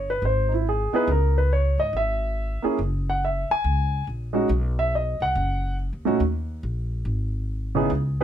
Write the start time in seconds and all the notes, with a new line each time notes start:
Already playing: G1
0.10 B4
0.22 G#1 C5
0.48 D#4
0.54 E4
0.69 G#4
0.93 B3 D#4 E4 G#4 B4, muted upright bass stroke
1.07 C#2 A#4
1.38 B4
1.53 C#5
1.78 G#2 D#5
1.93 G#1 E5
2.62 A#3 C#4 E4 G#4, muted upright bass stroke
2.79 F#1
3.10 F#5
3.25 E5
3.50 G#5, muted upright bass stroke
3.64 C#2
4.07 A#1
4.33 G#3 C#4 D#4 F#4
4.49 B1
4.79 E5
4.95 D#5
5.20 C2 F#5
5.35 F#1
5.93 D#2
6.05 A#2 A3 C#4 D#4 F#4
6.20 D#2
6.63 A#1
7.05 G#1
7.75 C#3 B3 D#4 E4 G#4
7.90 C#2
8.21 G#4